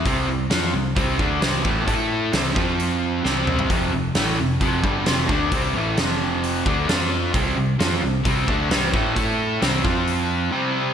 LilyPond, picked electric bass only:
\new Staff \with { instrumentName = "Picked electric bass" } { \clef bass \time 4/4 \key f \lydian \tempo 4 = 132 c,8 c,8 f,8 c,8 c,8 d,8 c,8 a,,8 | a,4 c,8 f,4. c,4 | f,,8 f,,8 a,,8 f,,8 f,,8 g,,8 f,,8 d,8 | c,8 a,,8 f,,4. d,8 f,4 |
c,8 c,8 f,8 c,8 c,8 d,8 c,8 a,,8 | a,4 c,8 f,4. r4 | }